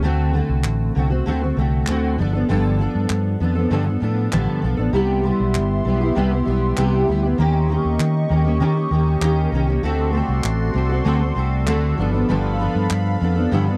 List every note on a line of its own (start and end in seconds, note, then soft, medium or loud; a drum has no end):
0.02 0.40 D2 loud
0.02 0.32 D3 loud
0.02 0.33 A3 medium
0.02 0.35 C4 loud
0.02 0.35 F#4 loud
0.33 0.95 D3 medium
0.33 0.96 A3 medium
0.33 0.96 C4 medium
0.37 0.97 F#4 medium
0.49 0.62 C2 medium
0.64 0.89 A1 loud
0.64 clap medium
0.95 1.20 C2 loud
0.95 1.11 D3 medium
0.95 1.11 A3 medium
0.95 1.11 C4 medium
0.95 1.09 F#4 medium
1.10 1.27 C4 medium
1.10 1.26 F#4 medium
1.14 1.26 A3 soft
1.26 1.51 D2 loud
1.26 1.41 D3 medium
1.26 1.42 A3 medium
1.26 1.43 C4 loud
1.26 1.40 F#4 loud
1.42 1.57 A3 soft
1.42 1.58 C4 medium
1.42 1.57 F#4 medium
1.57 1.82 C2 medium
1.57 1.87 D3 medium
1.57 1.88 A3 medium
1.57 1.89 C4 medium
1.61 1.90 F#4 medium
1.87 2.20 D2 loud
1.87 2.19 D3 medium
1.87 2.18 A3 loud
1.87 2.19 C4 medium
1.87 clap medium
1.91 2.20 F#4 loud
2.18 2.43 G1 loud
2.18 2.34 F3 medium
2.18 2.34 B3 medium
2.18 2.34 D4 medium
2.18 2.32 A4 medium
2.33 2.49 B3 medium
2.33 2.50 D4 medium
2.33 2.49 A4 medium
2.37 2.49 F3 soft
2.49 2.86 G1 loud
2.49 2.79 G2 medium
2.49 2.80 D3 loud
2.49 2.77 F3 loud
2.49 2.79 B3 medium
2.49 2.80 D4 loud
2.49 2.81 A4 loud
2.79 3.39 F3 medium
2.79 3.41 B3 medium
2.79 3.42 D4 medium
2.79 3.42 A4 medium
2.95 3.07 G2 medium
3.10 3.35 G2 loud
3.10 clap medium
3.40 3.65 F2 medium
3.40 3.56 F3 medium
3.40 3.57 B3 medium
3.40 3.55 D4 medium
3.40 3.54 A4 medium
3.55 3.71 F3 soft
3.55 3.71 B3 medium
3.55 3.72 D4 medium
3.55 3.71 A4 medium
3.70 3.86 G2 medium
3.70 3.96 G2 loud
3.70 3.87 D3 medium
3.70 3.87 F3 medium
3.70 3.87 B3 medium
3.70 3.86 D4 loud
3.70 3.84 A4 medium
3.85 3.99 F3 soft
3.85 4.00 B3 soft
3.85 4.02 D4 medium
3.85 4.01 A4 medium
4.00 4.26 A2 loud
4.00 4.32 F3 medium
4.00 4.32 B3 medium
4.00 4.33 D4 medium
4.00 4.33 A4 medium
4.32 4.45 A1 medium
4.32 4.63 G2 medium
4.32 4.63 D3 medium
4.32 4.61 F3 loud
4.32 4.62 B3 loud
4.32 4.63 D4 loud
4.32 4.64 A4 loud
4.32 clap medium
4.62 4.76 B1 medium
4.62 4.78 F3 medium
4.62 4.79 B3 medium
4.62 4.78 D4 medium
4.62 4.76 A4 medium
4.77 4.91 A1 medium
4.77 4.94 F3 soft
4.77 4.93 B3 medium
4.77 4.94 D4 medium
4.77 4.93 A4 medium
4.93 5.30 C2 loud
4.93 5.24 C3 medium
4.93 5.22 G3 medium
4.93 7.37 B3 medium
4.93 5.24 B3 medium
4.93 5.25 E4 medium
4.93 5.25 G4 loud
4.93 7.37 E5 medium
4.93 7.37 C6 medium
5.24 5.84 G3 medium
5.24 5.85 B3 medium
5.24 5.87 E4 medium
5.24 5.89 G4 medium
5.40 5.56 B1 medium
5.54 5.79 G1 medium
5.54 clap medium
5.85 6.10 B1 medium
5.85 6.01 G3 medium
5.85 6.02 B3 medium
5.85 6.02 E4 medium
5.89 6.00 G4 medium
6.01 6.16 B3 soft
6.01 6.16 E4 medium
6.01 6.16 G4 medium
6.15 6.41 C2 medium
6.15 6.31 C3 medium
6.15 6.32 G3 medium
6.15 6.32 B3 loud
6.15 6.32 E4 loud
6.15 6.30 G4 loud
6.31 6.46 B3 soft
6.31 6.47 E4 medium
6.31 6.47 G4 medium
6.45 6.72 B1 medium
6.45 6.77 G3 medium
6.45 6.77 B3 medium
6.45 6.78 E4 medium
6.50 6.79 G4 medium
6.77 7.03 C2 medium
6.77 7.08 C3 medium
6.77 7.06 G3 medium
6.77 7.08 B3 loud
6.77 7.09 E4 medium
6.77 7.09 G4 loud
6.77 clap medium
7.07 7.33 D2 medium
7.07 7.23 G3 medium
7.07 7.24 B3 medium
7.07 7.24 E4 medium
7.07 7.22 G4 medium
7.23 7.39 B3 medium
7.23 7.40 E4 medium
7.23 7.39 G4 medium
7.38 7.76 D#2 loud
7.38 7.67 D#3 medium
7.38 7.68 A#3 medium
7.38 7.70 C#4 loud
7.38 9.82 G4 medium
7.38 7.71 G4 loud
7.38 9.82 D#5 medium
7.38 9.82 C#6 medium
7.68 8.28 D#3 medium
7.68 8.30 A#3 medium
7.68 8.30 C#4 medium
7.68 8.32 G4 medium
7.85 7.97 D#2 medium
8.00 8.24 D#3 loud
8.00 clap medium
8.29 8.62 D#2 loud
8.29 8.45 D#3 medium
8.29 8.46 A#3 medium
8.29 8.45 C#4 medium
8.29 8.43 G4 medium
8.44 8.60 A#3 soft
8.44 8.61 C#4 medium
8.44 8.61 G4 medium
8.60 8.76 D#3 medium
8.60 8.85 D#3 loud
8.60 8.77 A#3 loud
8.60 8.76 C#4 loud
8.60 8.74 G4 loud
8.75 8.91 A#3 soft
8.75 8.92 C#4 medium
8.75 8.91 G4 medium
8.91 9.16 D#2 medium
8.91 9.20 D#3 medium
8.91 9.22 A#3 medium
8.91 9.22 C#4 medium
8.95 9.23 G4 medium
9.21 9.46 D#2 loud
9.21 9.51 D#3 medium
9.21 9.53 A#3 medium
9.21 9.54 C#4 loud
9.21 9.54 G4 loud
9.21 clap medium
9.52 9.77 C2 medium
9.52 9.68 D#3 medium
9.52 9.69 A#3 medium
9.52 9.69 C#4 medium
9.56 9.66 G4 medium
9.67 9.85 C#4 medium
9.67 9.83 G4 medium
9.72 9.83 A#3 medium
9.83 10.20 D2 loud
9.83 10.14 D3 loud
9.83 10.12 A3 loud
9.83 10.13 C4 medium
9.83 11.96 F#4 medium
9.83 10.14 F#4 loud
9.83 10.15 A4 medium
9.83 11.96 D5 medium
9.83 11.96 C6 medium
10.13 10.73 A3 medium
10.13 10.74 C4 medium
10.13 10.75 F#4 medium
10.17 10.77 A4 medium
10.29 10.41 C2 medium
10.44 10.69 A1 loud
10.44 clap medium
10.74 11.00 C2 medium
10.74 10.90 A3 medium
10.74 10.91 C4 medium
10.74 10.91 F#4 medium
10.74 10.88 A4 medium
10.89 11.05 C4 soft
10.89 11.05 F#4 medium
10.89 11.06 A4 medium
11.05 11.31 D2 loud
11.05 11.21 D3 medium
11.05 11.21 A3 loud
11.05 11.22 C4 loud
11.05 11.21 F#4 loud
11.05 11.19 A4 loud
11.20 11.37 F#4 medium
11.20 11.36 A4 medium
11.24 11.35 C4 medium
11.35 11.68 C2 loud
11.35 11.66 A3 medium
11.35 11.67 C4 medium
11.35 11.67 F#4 medium
11.35 11.68 A4 medium
11.67 11.92 D2 loud
11.67 11.98 D3 medium
11.67 11.97 A3 medium
11.67 11.99 C4 loud
11.67 11.99 F#4 loud
11.67 11.99 A4 loud
11.67 clap medium
11.98 12.23 G1 loud
11.98 12.13 F3 medium
11.98 12.14 B3 medium
11.98 12.13 D4 medium
11.98 13.77 A4 medium
11.98 12.11 A4 medium
11.98 13.77 F5 medium
11.98 13.77 B5 medium
12.13 12.29 B3 medium
12.13 12.29 D4 medium
12.13 12.28 A4 medium
12.17 12.29 F3 medium
12.29 12.66 G1 loud
12.29 12.59 G2 loud
12.29 12.60 D3 loud
12.29 12.58 F3 medium
12.29 12.59 B3 medium
12.29 12.60 D4 medium
12.29 12.61 A4 loud
12.59 13.19 F3 medium
12.59 13.22 B3 medium
12.59 13.22 D4 medium
12.59 13.22 A4 medium
12.75 12.87 G2 loud
12.90 13.15 G2 loud
12.90 clap medium
13.20 13.46 F2 medium
13.20 13.36 F3 medium
13.20 13.37 B3 medium
13.20 13.36 D4 medium
13.20 13.34 A4 medium
13.35 13.52 B3 medium
13.35 13.52 D4 medium
13.35 13.51 A4 medium
13.39 13.51 F3 medium
13.51 13.67 G2 medium
13.51 13.76 G2 loud
13.51 13.67 D3 medium
13.51 13.67 F3 medium
13.51 13.68 B3 loud
13.51 13.67 D4 loud
13.51 13.65 A4 loud
13.66 13.77 F3 soft
13.66 13.77 B3 medium
13.66 13.77 D4 medium
13.66 13.77 A4 medium